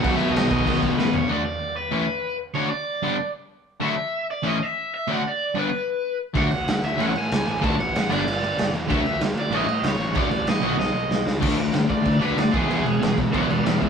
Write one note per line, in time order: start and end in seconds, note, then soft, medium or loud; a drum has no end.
0.00 0.24 B1 medium
0.00 1.28 B2 medium
0.00 1.28 D#3 medium
0.00 1.28 F#3 medium
0.00 1.28 B3 medium
0.00 1.29 D#4 medium
0.00 0.15 F#5 loud
0.04 1.29 B4 medium
0.04 kick loud
0.04 crash loud
0.15 0.32 E5 medium
0.20 crash medium
0.32 0.44 B1 loud
0.32 0.48 D#5 loud
0.36 snare loud
0.36 crash loud
0.49 0.61 B2 medium
0.49 0.79 D#5 medium
0.49 kick loud
0.49 crash medium
0.59 kick medium
0.64 0.77 B1 loud
0.64 1.27 B2 medium
0.64 1.27 F#3 medium
0.64 1.28 B3 medium
0.64 kick loud
0.64 crash medium
0.82 0.92 B1 medium
0.82 kick medium
0.82 crash medium
0.97 1.07 A2 loud
0.97 1.15 B4 medium
0.97 snare medium
1.12 1.23 B1 medium
1.12 1.30 C#5 loud
1.12 floor tom loud
1.29 1.42 D3 medium
1.29 1.42 A3 medium
1.29 1.42 D4 medium
1.29 1.42 F#4 medium
1.29 1.44 D5 loud
1.45 1.76 D5 loud
1.77 2.36 B4 medium
1.91 2.04 A2 loud
1.91 2.05 E3 loud
1.91 2.05 A3 loud
1.91 2.05 C#4 loud
1.91 2.05 E4 loud
2.55 2.68 A2 medium
2.55 2.68 D3 medium
2.55 2.68 A3 medium
2.55 2.68 D4 medium
2.55 2.68 F#4 medium
2.55 2.69 C#5 medium
2.70 3.30 D5 medium
3.03 3.16 G2 loud
3.03 3.16 D3 medium
3.03 3.16 G3 loud
3.03 3.16 B3 loud
3.03 3.16 D4 loud
3.80 3.94 D3 medium
3.80 3.94 F#3 medium
3.80 3.94 A3 medium
3.80 3.94 D4 medium
3.80 4.27 E5 loud
4.31 4.47 D5 medium
4.44 4.57 A2 medium
4.44 4.58 E3 loud
4.44 4.57 A3 loud
4.44 4.58 C#4 loud
4.44 4.58 E4 loud
4.44 4.63 D#5 medium
4.63 4.93 E5 medium
4.94 5.11 E5 medium
5.08 5.21 A2 medium
5.08 5.22 D3 medium
5.08 5.22 A3 medium
5.08 5.22 D4 loud
5.08 5.22 F#4 loud
5.08 5.27 F#5 loud
5.27 5.58 D5 medium
5.55 5.69 G2 loud
5.55 5.69 D3 medium
5.55 5.69 G3 medium
5.55 5.69 B3 loud
5.55 5.69 D4 loud
5.55 6.17 B4 medium
6.34 6.49 D2 medium
6.34 6.48 D3 medium
6.34 6.48 F#3 loud
6.34 6.48 A3 medium
6.34 6.48 D4 medium
6.34 kick loud
6.34 crash medium
6.38 6.85 F#5 loud
6.51 6.65 D2 medium
6.51 crash medium
6.66 6.81 D2 medium
6.66 snare loud
6.66 crash medium
6.82 6.97 D2 medium
6.82 7.01 E5 loud
6.82 crash medium
6.98 7.13 A1 medium
6.98 7.11 A2 loud
6.98 7.11 E3 loud
6.98 7.11 A3 loud
6.98 7.12 C#4 loud
6.98 7.12 E4 loud
6.98 crash medium
7.02 7.17 F#5 medium
7.15 7.29 A2 medium
7.15 7.49 G#5 loud
7.15 crash medium
7.31 7.45 C#2 medium
7.31 snare loud
7.31 crash medium
7.48 7.63 A1 medium
7.48 7.64 G#5 loud
7.48 crash medium
7.61 7.77 A1 medium
7.61 7.75 A2 medium
7.61 7.75 D3 medium
7.61 7.75 A3 loud
7.61 7.75 D4 medium
7.61 7.75 F#4 medium
7.61 7.79 A5 loud
7.61 kick loud
7.61 crash medium
7.79 7.93 A1 medium
7.79 8.09 F#5 loud
7.79 crash medium
7.95 8.08 A1 medium
7.95 snare loud
7.95 crash medium
8.09 8.25 G1 medium
8.09 8.22 G2 medium
8.09 8.23 D3 medium
8.09 8.23 G3 loud
8.09 8.23 B3 loud
8.09 8.23 D4 loud
8.09 8.70 D5 loud
8.09 crash loud
8.26 8.40 G1 medium
8.26 crash medium
8.41 8.55 G1 medium
8.41 crash medium
8.56 8.71 G1 medium
8.56 snare loud
8.56 crash medium
8.72 8.90 E2 loud
8.72 crash medium
8.89 9.04 D2 medium
8.89 9.02 D3 loud
8.89 9.02 F#3 medium
8.89 9.02 A3 medium
8.89 9.02 D4 loud
8.89 9.20 E5 loud
8.89 kick loud
8.89 crash medium
9.04 9.18 D2 loud
9.04 crash medium
9.20 9.33 D2 medium
9.20 snare loud
9.20 crash medium
9.34 9.49 D2 medium
9.34 crash medium
9.39 9.54 D5 medium
9.50 9.65 A1 loud
9.50 9.65 A2 medium
9.50 9.65 E3 loud
9.50 9.65 A3 loud
9.50 9.66 C#4 loud
9.50 9.66 E4 loud
9.50 crash medium
9.55 9.87 D#5 medium
9.67 9.81 A2 medium
9.67 crash medium
9.82 9.97 C#2 medium
9.82 snare loud
9.82 crash medium
9.88 10.18 C#5 medium
9.98 10.13 A1 medium
9.98 crash medium
10.15 10.29 A1 medium
10.15 10.28 A2 medium
10.15 10.28 D3 medium
10.15 10.29 A3 medium
10.15 10.29 D4 medium
10.15 10.29 F#4 loud
10.15 10.48 D5 loud
10.15 kick loud
10.15 crash medium
10.30 10.44 A1 medium
10.30 crash medium
10.47 10.61 A1 medium
10.47 10.78 D#5 medium
10.47 snare loud
10.47 crash medium
10.62 10.76 B1 medium
10.62 10.76 B2 medium
10.62 10.76 D#3 loud
10.62 10.76 F#3 loud
10.62 10.76 B3 loud
10.62 10.76 F#4 loud
10.62 crash medium
10.78 10.92 B1 loud
10.78 11.23 D#5 medium
10.78 snare medium
10.93 11.08 B1 medium
11.08 11.23 B1 medium
11.08 snare loud
11.26 11.40 C#2 medium
11.26 snare medium
11.40 11.53 D2 medium
11.40 11.56 D3 medium
11.40 11.57 A3 medium
11.40 11.57 D4 medium
11.40 kick loud
11.40 crash loud
11.40 crash medium
11.57 11.69 D2 medium
11.57 11.72 D3 medium
11.57 11.72 A3 medium
11.57 crash medium
11.73 11.85 D2 medium
11.73 11.88 D3 medium
11.73 11.88 A3 medium
11.73 snare loud
11.73 crash medium
11.89 12.00 D3 medium
11.89 12.04 D3 medium
11.89 12.04 A3 medium
11.89 12.21 D5 medium
11.89 kick medium
11.89 crash medium
12.05 12.16 D2 medium
12.05 12.20 D3 medium
12.05 12.20 A3 medium
12.05 kick medium
12.05 crash medium
12.21 12.32 D2 medium
12.21 12.36 D3 loud
12.21 12.36 A3 medium
12.21 12.37 D4 loud
12.21 12.37 B4 medium
12.21 crash medium
12.36 12.48 D2 medium
12.36 12.52 D3 medium
12.36 12.52 A3 medium
12.36 12.53 D5 medium
12.36 snare loud
12.36 crash medium
12.50 12.64 E1 medium
12.50 12.65 E2 medium
12.50 12.66 B2 medium
12.50 12.68 E3 medium
12.50 12.69 G#3 loud
12.50 12.69 B3 loud
12.50 13.15 G#4 loud
12.50 kick loud
12.50 crash medium
12.66 12.80 E1 medium
12.66 12.82 E2 medium
12.66 12.82 B2 loud
12.66 12.84 E3 medium
12.66 12.85 G#3 medium
12.71 12.85 B3 loud
12.71 crash medium
12.83 12.95 E1 medium
12.83 12.98 E2 medium
12.83 12.98 B2 medium
12.83 12.99 E3 medium
12.83 13.00 G#3 medium
12.83 crash medium
12.99 13.12 E1 medium
12.99 13.14 E2 medium
12.99 13.14 B2 medium
12.99 13.16 E3 medium
12.99 13.15 G#3 medium
12.99 crash medium
13.03 snare loud
13.15 13.28 E1 medium
13.15 13.30 E2 medium
13.15 13.31 B2 medium
13.15 13.32 E3 medium
13.15 13.32 G#3 medium
13.15 kick medium
13.15 crash medium
13.31 13.45 B1 loud
13.31 13.47 E2 medium
13.31 13.47 B2 medium
13.31 13.48 E3 loud
13.31 13.48 G#3 loud
13.31 13.48 B3 loud
13.31 13.47 B4 medium
13.31 13.48 D5 loud
13.31 kick loud
13.31 crash medium
13.47 13.59 E1 medium
13.47 13.62 E2 medium
13.47 13.63 B2 medium
13.47 13.63 E3 medium
13.47 13.64 G#3 medium
13.47 13.62 B4 medium
13.47 13.63 D5 medium
13.47 crash medium
13.64 13.75 E1 loud
13.64 13.79 E2 medium
13.64 13.79 B2 medium
13.64 13.79 E3 medium
13.64 13.79 G#3 medium
13.64 13.79 B4 medium
13.64 13.79 D5 medium
13.64 snare loud
13.64 crash medium
13.79 13.89 C#2 medium
13.79 13.89 E2 medium
13.79 13.89 B2 medium
13.79 13.89 E3 medium
13.79 13.89 G#3 medium
13.79 13.89 G#4 medium
13.79 13.89 E5 medium
13.79 kick medium
13.79 crash medium